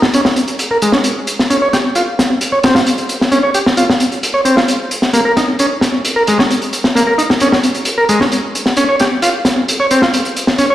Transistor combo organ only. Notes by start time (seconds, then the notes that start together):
0.15 C#4
0.71 A#4
0.82 G#3
0.94 C#4
1.50 C#4
1.62 C#5
1.73 G4
1.96 F4
2.52 C#5
2.64 C4
2.75 F4
3.31 C#4
3.43 C#5
3.55 G4
3.77 F4
4.34 C#5
4.45 C4
4.57 F4
5.13 A#3
5.25 A#4
5.37 D#4
5.60 C#4
6.16 A#4
6.28 G#3
6.39 C#4
6.96 A#3
7.07 A#4
7.18 D#4
7.41 C#4
7.98 A#4
8.09 G#3
8.21 C#4
8.77 C#4
8.89 C#5
9.00 G4
9.22 F4
9.80 C#5
9.91 C4
10.02 F4
10.58 C#4
10.70 C#5